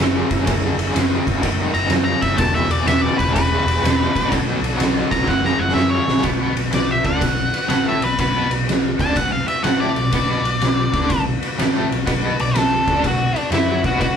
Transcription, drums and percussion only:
0.00 snare loud
0.31 kick medium
0.31 ride medium
0.47 kick loud
0.47 ride loud
0.79 ride medium
0.89 snare soft
0.96 snare loud
0.96 ride loud
1.27 kick medium
1.27 ride medium
1.43 kick medium
1.43 ride medium
1.74 ride medium
1.84 snare soft
1.90 snare loud
1.90 ride medium
2.22 kick medium
2.22 ride medium
2.38 kick loud
2.38 ride loud
2.71 ride medium
2.80 snare soft
2.88 snare loud
2.88 ride loud
3.19 kick medium
3.19 ride medium
3.36 kick medium
3.36 ride loud
3.68 ride medium
3.78 snare soft
3.85 snare loud
3.85 ride loud
4.16 kick medium
4.16 ride medium
4.32 kick loud
4.32 ride loud
4.64 ride medium
4.73 snare soft
4.80 snare loud
4.80 ride loud
5.12 kick medium
5.12 ride medium
5.28 kick medium
5.28 snare medium
5.44 snare medium
5.69 snare medium
5.76 snare medium
6.08 snare loud
6.18 snare medium
6.23 kick loud
6.23 ride medium
6.57 ride medium
6.66 snare soft
6.73 snare loud
6.73 ride medium
7.05 kick loud
7.05 ride medium
7.21 kick medium
7.21 ride loud
7.54 ride medium
7.63 snare soft
7.70 snare loud
7.70 ride loud
8.02 ride medium
8.19 kick loud
8.19 ride medium
8.51 ride medium
8.69 snare loud
8.69 ride medium
8.99 kick loud
8.99 ride medium
9.16 kick medium
9.16 ride medium
9.48 ride medium
9.64 snare loud
9.64 ride medium
9.96 ride medium
10.12 kick loud
10.12 ride medium
10.45 ride medium
10.61 snare loud
10.61 ride medium
10.94 kick loud
10.94 ride medium
11.10 kick medium
11.10 ride loud
11.43 ride medium
11.52 snare soft
11.59 snare loud
11.59 ride loud
11.92 ride medium
12.07 kick loud
12.07 ride loud
12.39 ride medium
12.55 snare loud
12.55 ride loud
12.88 kick medium
12.88 ride medium
13.04 kick medium
13.04 ride medium
13.36 ride medium
13.52 snare loud
13.52 ride medium
13.84 kick loud
13.84 ride medium
14.01 kick loud
14.01 ride medium

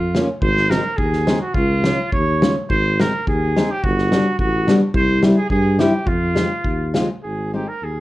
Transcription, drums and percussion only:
0.15 snare medium
0.42 kick medium
0.57 snare soft
0.71 snare medium
0.98 kick medium
1.13 snare soft
1.27 snare medium
1.55 kick medium
1.84 snare medium
2.12 kick medium
2.42 snare medium
2.70 kick medium
3.00 snare medium
3.27 kick medium
3.56 snare medium
3.84 kick medium
3.98 snare soft
4.12 snare medium
4.39 kick medium
4.68 snare medium
4.94 kick medium
5.23 snare medium
5.50 kick medium
5.79 snare medium
6.07 kick medium
6.36 snare medium
6.64 kick medium
6.94 snare medium

